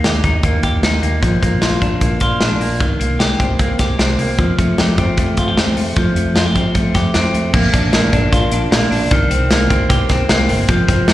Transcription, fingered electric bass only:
0, 0, Header, 1, 2, 480
1, 0, Start_track
1, 0, Key_signature, -2, "major"
1, 0, Tempo, 394218
1, 1494, Time_signature, 4, 2, 24, 8
1, 13557, End_track
2, 0, Start_track
2, 0, Title_t, "Fingered electric bass"
2, 0, Program_c, 0, 33
2, 52, Note_on_c, 0, 39, 88
2, 248, Note_off_c, 0, 39, 0
2, 290, Note_on_c, 0, 39, 73
2, 487, Note_off_c, 0, 39, 0
2, 528, Note_on_c, 0, 39, 86
2, 727, Note_off_c, 0, 39, 0
2, 771, Note_on_c, 0, 39, 91
2, 969, Note_off_c, 0, 39, 0
2, 1013, Note_on_c, 0, 39, 93
2, 1210, Note_off_c, 0, 39, 0
2, 1250, Note_on_c, 0, 39, 74
2, 1449, Note_off_c, 0, 39, 0
2, 1494, Note_on_c, 0, 34, 91
2, 1691, Note_off_c, 0, 34, 0
2, 1738, Note_on_c, 0, 34, 91
2, 1934, Note_off_c, 0, 34, 0
2, 1969, Note_on_c, 0, 34, 88
2, 2169, Note_off_c, 0, 34, 0
2, 2213, Note_on_c, 0, 34, 74
2, 2412, Note_off_c, 0, 34, 0
2, 2449, Note_on_c, 0, 34, 78
2, 2649, Note_off_c, 0, 34, 0
2, 2689, Note_on_c, 0, 34, 85
2, 2889, Note_off_c, 0, 34, 0
2, 2938, Note_on_c, 0, 34, 100
2, 3135, Note_off_c, 0, 34, 0
2, 3169, Note_on_c, 0, 34, 83
2, 3415, Note_off_c, 0, 34, 0
2, 3415, Note_on_c, 0, 36, 83
2, 3614, Note_off_c, 0, 36, 0
2, 3658, Note_on_c, 0, 36, 86
2, 3856, Note_off_c, 0, 36, 0
2, 3895, Note_on_c, 0, 36, 86
2, 4094, Note_off_c, 0, 36, 0
2, 4139, Note_on_c, 0, 36, 79
2, 4336, Note_off_c, 0, 36, 0
2, 4374, Note_on_c, 0, 36, 82
2, 4574, Note_off_c, 0, 36, 0
2, 4619, Note_on_c, 0, 36, 94
2, 4817, Note_off_c, 0, 36, 0
2, 4861, Note_on_c, 0, 36, 94
2, 5058, Note_off_c, 0, 36, 0
2, 5096, Note_on_c, 0, 36, 80
2, 5341, Note_on_c, 0, 41, 98
2, 5360, Note_off_c, 0, 36, 0
2, 5539, Note_off_c, 0, 41, 0
2, 5584, Note_on_c, 0, 41, 89
2, 5781, Note_off_c, 0, 41, 0
2, 5819, Note_on_c, 0, 41, 89
2, 6017, Note_off_c, 0, 41, 0
2, 6063, Note_on_c, 0, 41, 78
2, 6260, Note_off_c, 0, 41, 0
2, 6305, Note_on_c, 0, 41, 80
2, 6501, Note_off_c, 0, 41, 0
2, 6543, Note_on_c, 0, 41, 82
2, 6740, Note_off_c, 0, 41, 0
2, 6780, Note_on_c, 0, 41, 101
2, 6978, Note_off_c, 0, 41, 0
2, 7018, Note_on_c, 0, 41, 70
2, 7217, Note_off_c, 0, 41, 0
2, 7263, Note_on_c, 0, 41, 88
2, 7460, Note_off_c, 0, 41, 0
2, 7496, Note_on_c, 0, 41, 82
2, 7695, Note_off_c, 0, 41, 0
2, 7741, Note_on_c, 0, 41, 79
2, 7939, Note_off_c, 0, 41, 0
2, 7980, Note_on_c, 0, 41, 70
2, 8178, Note_off_c, 0, 41, 0
2, 8217, Note_on_c, 0, 41, 77
2, 8416, Note_off_c, 0, 41, 0
2, 8459, Note_on_c, 0, 41, 84
2, 8657, Note_off_c, 0, 41, 0
2, 8705, Note_on_c, 0, 41, 99
2, 8900, Note_off_c, 0, 41, 0
2, 8943, Note_on_c, 0, 41, 75
2, 9139, Note_off_c, 0, 41, 0
2, 9178, Note_on_c, 0, 34, 99
2, 9376, Note_off_c, 0, 34, 0
2, 9421, Note_on_c, 0, 34, 96
2, 9617, Note_off_c, 0, 34, 0
2, 9663, Note_on_c, 0, 34, 98
2, 9858, Note_off_c, 0, 34, 0
2, 9900, Note_on_c, 0, 34, 81
2, 10096, Note_off_c, 0, 34, 0
2, 10138, Note_on_c, 0, 34, 93
2, 10335, Note_off_c, 0, 34, 0
2, 10374, Note_on_c, 0, 34, 96
2, 10572, Note_off_c, 0, 34, 0
2, 10613, Note_on_c, 0, 34, 109
2, 10811, Note_off_c, 0, 34, 0
2, 10858, Note_on_c, 0, 34, 81
2, 11053, Note_off_c, 0, 34, 0
2, 11097, Note_on_c, 0, 36, 101
2, 11292, Note_off_c, 0, 36, 0
2, 11339, Note_on_c, 0, 36, 99
2, 11533, Note_off_c, 0, 36, 0
2, 11579, Note_on_c, 0, 36, 94
2, 11772, Note_off_c, 0, 36, 0
2, 11818, Note_on_c, 0, 36, 83
2, 12012, Note_off_c, 0, 36, 0
2, 12055, Note_on_c, 0, 36, 98
2, 12249, Note_off_c, 0, 36, 0
2, 12293, Note_on_c, 0, 36, 88
2, 12488, Note_off_c, 0, 36, 0
2, 12541, Note_on_c, 0, 36, 103
2, 12732, Note_off_c, 0, 36, 0
2, 12775, Note_on_c, 0, 31, 86
2, 12969, Note_off_c, 0, 31, 0
2, 13010, Note_on_c, 0, 29, 113
2, 13205, Note_off_c, 0, 29, 0
2, 13254, Note_on_c, 0, 29, 94
2, 13447, Note_off_c, 0, 29, 0
2, 13489, Note_on_c, 0, 29, 97
2, 13557, Note_off_c, 0, 29, 0
2, 13557, End_track
0, 0, End_of_file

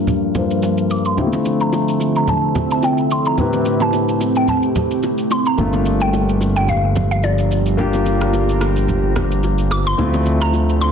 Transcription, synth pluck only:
0, 0, Header, 1, 2, 480
1, 0, Start_track
1, 0, Tempo, 550459
1, 1028, Time_signature, 4, 2, 24, 8
1, 9521, End_track
2, 0, Start_track
2, 0, Title_t, "Synth pluck"
2, 0, Program_c, 0, 84
2, 793, Note_on_c, 0, 86, 101
2, 851, Note_off_c, 0, 86, 0
2, 923, Note_on_c, 0, 84, 100
2, 1405, Note_on_c, 0, 82, 104
2, 1416, Note_off_c, 0, 84, 0
2, 1849, Note_off_c, 0, 82, 0
2, 1887, Note_on_c, 0, 82, 90
2, 1984, Note_off_c, 0, 82, 0
2, 1996, Note_on_c, 0, 81, 98
2, 2338, Note_off_c, 0, 81, 0
2, 2371, Note_on_c, 0, 81, 92
2, 2476, Note_off_c, 0, 81, 0
2, 2477, Note_on_c, 0, 79, 91
2, 2719, Note_off_c, 0, 79, 0
2, 2719, Note_on_c, 0, 84, 95
2, 2776, Note_off_c, 0, 84, 0
2, 2849, Note_on_c, 0, 82, 95
2, 3328, Note_on_c, 0, 81, 98
2, 3338, Note_off_c, 0, 82, 0
2, 3808, Note_on_c, 0, 79, 80
2, 3818, Note_off_c, 0, 81, 0
2, 3914, Note_on_c, 0, 81, 99
2, 3915, Note_off_c, 0, 79, 0
2, 4596, Note_off_c, 0, 81, 0
2, 4636, Note_on_c, 0, 84, 93
2, 4766, Note_on_c, 0, 82, 90
2, 4767, Note_off_c, 0, 84, 0
2, 5210, Note_off_c, 0, 82, 0
2, 5245, Note_on_c, 0, 79, 87
2, 5713, Note_off_c, 0, 79, 0
2, 5723, Note_on_c, 0, 79, 82
2, 5832, Note_on_c, 0, 77, 89
2, 5833, Note_off_c, 0, 79, 0
2, 6192, Note_off_c, 0, 77, 0
2, 6202, Note_on_c, 0, 77, 77
2, 6250, Note_off_c, 0, 77, 0
2, 6311, Note_on_c, 0, 74, 69
2, 6655, Note_off_c, 0, 74, 0
2, 8472, Note_on_c, 0, 86, 97
2, 8530, Note_off_c, 0, 86, 0
2, 8605, Note_on_c, 0, 84, 96
2, 9082, Note_on_c, 0, 82, 103
2, 9097, Note_off_c, 0, 84, 0
2, 9430, Note_on_c, 0, 84, 98
2, 9439, Note_off_c, 0, 82, 0
2, 9489, Note_off_c, 0, 84, 0
2, 9521, End_track
0, 0, End_of_file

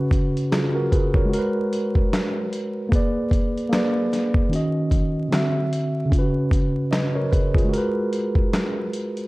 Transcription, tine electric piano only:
0, 0, Header, 1, 2, 480
1, 0, Start_track
1, 0, Tempo, 800000
1, 1752, Time_signature, 4, 2, 24, 8
1, 5566, End_track
2, 0, Start_track
2, 0, Title_t, "Tine electric piano"
2, 0, Program_c, 0, 4
2, 0, Control_c, 0, 64, 127
2, 0, Note_on_c, 0, 49, 72
2, 0, Note_on_c, 0, 61, 64
2, 0, Note_on_c, 0, 66, 67
2, 0, Note_on_c, 0, 71, 77
2, 307, Note_off_c, 0, 66, 0
2, 309, Note_on_c, 0, 68, 61
2, 313, Note_on_c, 0, 65, 55
2, 321, Note_off_c, 0, 71, 0
2, 443, Note_off_c, 0, 68, 0
2, 445, Note_off_c, 0, 65, 0
2, 448, Note_on_c, 0, 70, 78
2, 453, Note_on_c, 0, 66, 66
2, 545, Note_off_c, 0, 70, 0
2, 548, Note_off_c, 0, 66, 0
2, 550, Note_on_c, 0, 71, 70
2, 556, Note_on_c, 0, 68, 58
2, 684, Note_off_c, 0, 71, 0
2, 687, Note_off_c, 0, 68, 0
2, 691, Note_on_c, 0, 73, 68
2, 697, Note_on_c, 0, 70, 52
2, 751, Note_on_c, 0, 56, 76
2, 752, Note_off_c, 0, 49, 0
2, 764, Note_off_c, 0, 61, 0
2, 776, Note_on_c, 0, 66, 70
2, 796, Note_off_c, 0, 70, 0
2, 801, Control_c, 0, 64, 0
2, 803, Note_on_c, 0, 70, 69
2, 830, Note_on_c, 0, 71, 86
2, 911, Control_c, 0, 64, 127
2, 919, Note_off_c, 0, 73, 0
2, 1712, Note_off_c, 0, 56, 0
2, 1725, Note_off_c, 0, 66, 0
2, 1734, Note_on_c, 0, 58, 76
2, 1739, Note_off_c, 0, 70, 0
2, 1749, Note_on_c, 0, 68, 67
2, 1751, Note_off_c, 0, 71, 0
2, 1758, Note_on_c, 0, 71, 65
2, 1760, Control_c, 0, 64, 0
2, 1773, Note_on_c, 0, 74, 76
2, 1864, Control_c, 0, 64, 127
2, 2206, Note_off_c, 0, 58, 0
2, 2213, Note_on_c, 0, 58, 83
2, 2219, Note_off_c, 0, 68, 0
2, 2226, Note_on_c, 0, 68, 63
2, 2233, Note_off_c, 0, 71, 0
2, 2239, Control_c, 0, 64, 0
2, 2240, Note_on_c, 0, 71, 66
2, 2243, Note_off_c, 0, 74, 0
2, 2253, Note_on_c, 0, 74, 79
2, 2330, Control_c, 0, 64, 127
2, 2694, Note_on_c, 0, 51, 76
2, 2703, Note_off_c, 0, 58, 0
2, 2707, Note_on_c, 0, 61, 65
2, 2709, Note_off_c, 0, 68, 0
2, 2716, Note_off_c, 0, 71, 0
2, 2720, Control_c, 0, 64, 0
2, 2720, Note_on_c, 0, 66, 67
2, 2723, Note_off_c, 0, 74, 0
2, 2734, Note_on_c, 0, 75, 82
2, 2838, Control_c, 0, 64, 127
2, 3170, Note_on_c, 0, 50, 63
2, 3183, Note_off_c, 0, 51, 0
2, 3184, Note_on_c, 0, 60, 65
2, 3189, Note_off_c, 0, 66, 0
2, 3190, Note_off_c, 0, 61, 0
2, 3197, Note_on_c, 0, 66, 60
2, 3198, Control_c, 0, 64, 0
2, 3203, Note_off_c, 0, 75, 0
2, 3212, Note_on_c, 0, 76, 82
2, 3304, Control_c, 0, 64, 127
2, 3631, Note_on_c, 0, 49, 73
2, 3659, Note_on_c, 0, 61, 62
2, 3661, Note_off_c, 0, 50, 0
2, 3668, Note_off_c, 0, 60, 0
2, 3674, Note_off_c, 0, 66, 0
2, 3680, Control_c, 0, 64, 0
2, 3682, Note_off_c, 0, 76, 0
2, 3685, Note_on_c, 0, 65, 53
2, 3712, Note_on_c, 0, 71, 76
2, 3724, Note_off_c, 0, 65, 0
2, 3724, Note_on_c, 0, 66, 66
2, 3793, Control_c, 0, 64, 127
2, 4144, Note_off_c, 0, 71, 0
2, 4147, Note_on_c, 0, 75, 66
2, 4152, Note_on_c, 0, 71, 55
2, 4169, Note_off_c, 0, 66, 0
2, 4282, Note_off_c, 0, 75, 0
2, 4284, Note_off_c, 0, 71, 0
2, 4292, Note_on_c, 0, 73, 81
2, 4295, Note_on_c, 0, 70, 70
2, 4387, Note_off_c, 0, 73, 0
2, 4389, Note_off_c, 0, 70, 0
2, 4389, Note_on_c, 0, 71, 66
2, 4391, Note_on_c, 0, 68, 55
2, 4522, Note_off_c, 0, 68, 0
2, 4523, Note_off_c, 0, 71, 0
2, 4529, Note_on_c, 0, 68, 63
2, 4530, Note_on_c, 0, 65, 51
2, 4586, Note_on_c, 0, 56, 71
2, 4592, Note_off_c, 0, 49, 0
2, 4606, Note_off_c, 0, 61, 0
2, 4613, Note_on_c, 0, 66, 69
2, 4638, Note_on_c, 0, 70, 74
2, 4640, Control_c, 0, 64, 0
2, 4666, Note_on_c, 0, 71, 92
2, 4758, Note_off_c, 0, 68, 0
2, 4759, Note_off_c, 0, 65, 0
2, 4759, Control_c, 0, 64, 127
2, 5549, Note_off_c, 0, 56, 0
2, 5563, Note_off_c, 0, 66, 0
2, 5566, Note_off_c, 0, 70, 0
2, 5566, Note_off_c, 0, 71, 0
2, 5566, End_track
0, 0, End_of_file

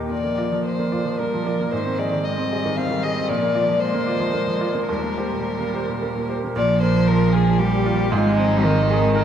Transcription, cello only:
0, 0, Header, 1, 2, 480
1, 0, Start_track
1, 0, Tempo, 538600
1, 102, Time_signature, 3, 2, 24, 8
1, 1060, Tempo, 523104
1, 3940, Tempo, 556586
1, 5860, Tempo, 519931
1, 8342, End_track
2, 0, Start_track
2, 0, Title_t, "Cello"
2, 0, Program_c, 0, 42
2, 101, Note_on_c, 0, 53, 33
2, 1061, Note_on_c, 0, 55, 35
2, 1075, Note_off_c, 0, 53, 0
2, 1300, Note_on_c, 0, 53, 37
2, 1314, Note_off_c, 0, 55, 0
2, 1524, Note_off_c, 0, 53, 0
2, 1530, Note_on_c, 0, 51, 37
2, 2011, Note_off_c, 0, 51, 0
2, 2021, Note_on_c, 0, 56, 43
2, 2262, Note_off_c, 0, 56, 0
2, 2270, Note_on_c, 0, 55, 45
2, 2981, Note_on_c, 0, 53, 50
2, 2995, Note_off_c, 0, 55, 0
2, 3197, Note_off_c, 0, 53, 0
2, 3203, Note_on_c, 0, 53, 54
2, 3441, Note_off_c, 0, 53, 0
2, 3448, Note_on_c, 0, 56, 50
2, 4422, Note_on_c, 0, 55, 42
2, 4435, Note_off_c, 0, 56, 0
2, 5690, Note_off_c, 0, 55, 0
2, 5863, Note_on_c, 0, 53, 85
2, 6816, Note_on_c, 0, 55, 78
2, 6830, Note_off_c, 0, 53, 0
2, 7305, Note_off_c, 0, 55, 0
2, 7311, Note_on_c, 0, 56, 105
2, 7790, Note_on_c, 0, 51, 92
2, 7804, Note_off_c, 0, 56, 0
2, 8342, Note_off_c, 0, 51, 0
2, 8342, End_track
0, 0, End_of_file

